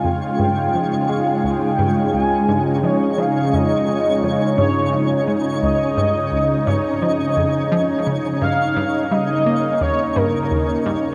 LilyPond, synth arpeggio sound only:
\new Staff \with { instrumentName = "Synth arpeggio sound" } { \clef bass \time 4/4 \key des \lydian \tempo 4 = 86 f,16 r16 g,8 f16 r16 aes16 r16 des,8 g,16 r16 des,8 g,8 | f16 r16 f8 f,16 r16 des8 f,16 r16 g,8 f16 r16 aes16 r16 | des,8 g,16 r16 des,8 g,8 f16 r16 f,8 f16 r16 des16 r16 | g,16 r16 g,8 g16 r16 bes16 r16 ees,8 g,16 r16 ees,8 g,8 | }